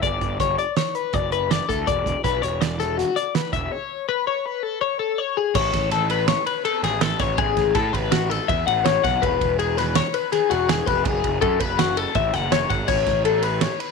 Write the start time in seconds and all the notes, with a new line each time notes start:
0.02 G1 D5, kick, closed hi-hat
0.21 G1, kick, closed hi-hat
0.40 G1 C#5, kick, snare, closed hi-hat
0.58 D5, closed hi-hat
0.76 C#5, snare, closed hi-hat
0.95 B4, closed hi-hat
1.13 F#1 D5, kick, closed hi-hat
1.32 B4, closed hi-hat
1.51 D5, snare, closed hi-hat
1.69 D2 A4, kick, snare, closed hi-hat
1.87 E1 D5, kick, closed hi-hat
2.06 E1, kick, closed hi-hat
2.24 B1 B4, kick, snare, closed hi-hat
2.42 E1 C#5, closed hi-hat
2.61 D5, snare, closed hi-hat
2.80 A4, snare, closed hi-hat
2.98 F#4, snare, closed hi-hat
3.16 D5, closed hi-hat
3.35 B4, snare, closed hi-hat
3.53 E1 E5, kick, closed hi-hat
3.72 C#5
4.09 B4
4.27 C#5
4.46 B4
4.63 A4
4.81 C#5
4.99 A4
5.18 C#5
5.37 G#4
5.55 A1 C#5, kick, crash
5.73 A1, kick, snare, ride
5.91 A4, snare, ride
6.10 B4, ride
6.28 C#5, snare, ride
6.46 B4, ride
6.65 A4, ride
6.83 A1 G#4, snare, ride
7.01 A4, snare, ride
7.19 A1 C#5, kick, snare, ride
7.38 A1 G#4, kick, ride
7.57 A1, kick, snare, ride
7.75 A2 A4, kick, snare, ride
7.93 A1 B4, kick, ride
8.11 F#4, snare, ride
8.30 A4, snare, ride
8.48 E2 E5, kick, ride
8.67 A1 F#5, ride
8.84 C#5, snare, ride
9.04 B1 F#5, kick, snare, ride
9.22 E1 B4, kick, ride
9.41 E1, kick, ride
9.59 G#4, ride
9.77 B4, snare, ride
9.95 C#5, snare, ride
10.14 B4, ride
10.32 G#4, snare, ride
10.50 E1 F#4, ride
10.69 G#4, snare, ride
10.86 F1 B4, kick, ride
11.04 F#1 G#4, kick, ride
11.24 F#1, kick, ride
11.41 F#2 A4, kick, ride
11.60 F#1 B4, kick, ride
11.79 F#4, snare, ride
11.97 A4, ride
12.15 A1 E5, kick, ride
12.34 F#1 F#5, snare, ride
12.52 C#5, snare, ride
12.70 G#1 F#5, kick, ride
12.88 A1 C#5, kick, crash
13.06 A1, kick, snare, ride
13.25 A4, ride
13.43 B4, ride
13.61 C#5, snare, ride
13.80 B4, ride